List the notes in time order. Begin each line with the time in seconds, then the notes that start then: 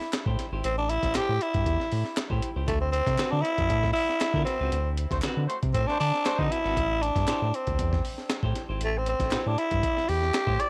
Already playing: E4
0.01 snare
0.13 snare, clap, closed hi-hat
0.26 A2 E4 G4 C5, kick
0.39 snare, closed hi-hat
0.52 G#1 E4 G4 C5
0.64 A1 C4, closed hi-hat
0.78 D4
0.89 E4, closed hi-hat
1.03 A1, kick, snare, closed hi-hat
1.15 A2 E4 G4 C5, snare, clap, closed hi-hat
1.29 A2
1.41 E4, closed hi-hat
1.54 G2, kick, closed hi-hat
1.66 E2, kick, closed hi-hat
1.80 snare
1.92 A2, open hi-hat
2.05 snare
2.17 snare, clap, closed hi-hat
2.30 A2 E4 G4 C5, kick
2.42 closed hi-hat
2.56 C#2 E4 G4 C5
2.68 D2 A3, kick, closed hi-hat
2.81 C4
2.92 C4, closed hi-hat
3.07 C3, kick, snare, closed hi-hat
3.18 D3 C4 F#4 B4, snare, clap, closed hi-hat
3.31 D3 D4
3.42 E4, closed hi-hat
3.58 F#2, kick, closed hi-hat
3.70 A2, kick, closed hi-hat
3.83 kick, snare
3.93 E4, open hi-hat
4.09 snare
4.21 snare, clap, closed hi-hat
4.34 D3 C4 F#4 B4, kick
4.45 C4, snare, closed hi-hat
4.60 C#2 C4 F#4 B4
4.72 D2, closed hi-hat
4.97 closed hi-hat
5.10 D2 A3 C4 F#4 C5, kick, snare, closed hi-hat
5.22 D3 C4 F#4 B4, snare, clap, closed hi-hat
5.37 D3
5.48 A3 C4 F#4 C5, closed hi-hat
5.63 C3, kick, closed hi-hat
5.74 A2 C4, kick, closed hi-hat
5.87 A3 C4 D4 F#4 C5, snare
6.00 D3 D4, open hi-hat
6.14 snare
6.25 A3 C4 F#4 C5, snare, clap, closed hi-hat
6.39 D3 C4 D#4 F#4 B4, kick
6.52 E4, closed hi-hat
6.64 G#1 C4 F#4 B4, snare
6.77 A1, kick, closed hi-hat
7.02 D4, closed hi-hat
7.16 G2, kick, snare, closed hi-hat
7.27 A2 E4 G4 C5, snare, clap, closed hi-hat
7.42 A2
7.54 C4, closed hi-hat
7.67 D2, kick, closed hi-hat
7.79 E2, kick, closed hi-hat
7.93 kick, snare
8.05 open hi-hat
8.18 snare
8.29 snare, clap, closed hi-hat
8.43 A2 E4 G4 C5, kick
8.55 snare, closed hi-hat
8.69 G#1 E4 G4 C5
8.80 A1 A3, closed hi-hat
8.98 C4
9.06 C4, closed hi-hat
9.20 A1, kick, snare, closed hi-hat
9.31 A2 E4 G4 C5, snare, clap, closed hi-hat
9.46 A2 D4
9.58 E4, closed hi-hat
9.71 G2, kick, closed hi-hat
9.83 kick, closed hi-hat
9.97 snare
10.09 E2 G4, open hi-hat
10.22 snare
10.34 snare, clap, closed hi-hat
10.47 A2 E4 G4 C5, kick
10.60 D5, closed hi-hat